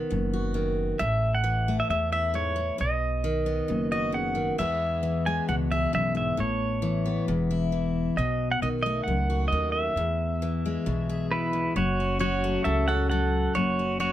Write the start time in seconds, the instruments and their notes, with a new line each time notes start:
Already playing: steel-string acoustic guitar D#3 B3
0.11 upright bass F#1, steel-string acoustic guitar F#2
0.33 steel-string acoustic guitar F#4
0.54 steel-string acoustic guitar D#3
0.99 upright bass A1, steel-string acoustic guitar A2, pedal steel guitar E5
1.35 pedal steel guitar F#5
1.44 steel-string acoustic guitar E3
1.68 steel-string acoustic guitar A3
1.80 pedal steel guitar E5
1.90 upright bass E2, steel-string acoustic guitar E2, pedal steel guitar E5
2.12 steel-string acoustic guitar E4, pedal steel guitar E5
2.34 steel-string acoustic guitar G#2, pedal steel guitar C#5
2.56 steel-string acoustic guitar A2
2.78 upright bass B1, steel-string acoustic guitar B2, pedal steel guitar D#5
3.24 steel-string acoustic guitar D#3
3.46 steel-string acoustic guitar B3
3.68 upright bass F#1, steel-string acoustic guitar F#2
3.92 steel-string acoustic guitar F#4, pedal steel guitar D#5
4.12 steel-string acoustic guitar C#3, pedal steel guitar F#5
4.35 steel-string acoustic guitar D#3
4.58 steel-string acoustic guitar E2 E3 G#3 B3 G#4, upright bass E2, pedal steel guitar E5
5.03 steel-string acoustic guitar E3
5.26 steel-string acoustic guitar G#3, pedal steel guitar G#5
5.48 upright bass C#2, steel-string acoustic guitar B2, pedal steel guitar F#5
5.71 steel-string acoustic guitar G#4, pedal steel guitar E5
5.93 upright bass B1, steel-string acoustic guitar F#2, pedal steel guitar E5
6.15 steel-string acoustic guitar G#2, pedal steel guitar E5
6.37 upright bass A1, steel-string acoustic guitar A2, pedal steel guitar C#5
6.82 steel-string acoustic guitar E3
7.06 steel-string acoustic guitar B3
7.28 upright bass E1, steel-string acoustic guitar E2
7.51 steel-string acoustic guitar E4
7.72 steel-string acoustic guitar E3
8.17 upright bass B1, steel-string acoustic guitar B2, pedal steel guitar D#5
8.52 pedal steel guitar F#5
8.62 upright bass B1, steel-string acoustic guitar D#3, pedal steel guitar D#5
8.83 steel-string acoustic guitar A3, pedal steel guitar D#5
9.04 upright bass C#2, pedal steel guitar F#5
9.08 steel-string acoustic guitar F#2
9.30 steel-string acoustic guitar F#4
9.48 pedal steel guitar D#5
9.52 upright bass D#2, steel-string acoustic guitar D#3
9.72 pedal steel guitar E5
9.96 upright bass E2, steel-string acoustic guitar E2
10.42 steel-string acoustic guitar E3
10.66 steel-string acoustic guitar G#3
10.86 upright bass B1, steel-string acoustic guitar B2
11.09 steel-string acoustic guitar G#4
11.31 pedal steel guitar E4 B4
11.53 steel-string acoustic guitar E2
11.76 upright bass F#1, steel-string acoustic guitar F#2, pedal steel guitar F#4 C#5
12.00 steel-string acoustic guitar C#4
12.19 steel-string acoustic guitar F#3 F#4, pedal steel guitar F#4 C#5
12.44 steel-string acoustic guitar A3
12.64 upright bass C#2, steel-string acoustic guitar C#3, pedal steel guitar A4 E5
12.88 steel-string acoustic guitar C#4, pedal steel guitar A4 F#5
13.10 steel-string acoustic guitar F#3, pedal steel guitar A4 F#5
13.55 upright bass F#1, steel-string acoustic guitar F#2, pedal steel guitar F#4 C#5
13.79 steel-string acoustic guitar C#4
14.00 steel-string acoustic guitar F#3 F#4, pedal steel guitar F#4 C#5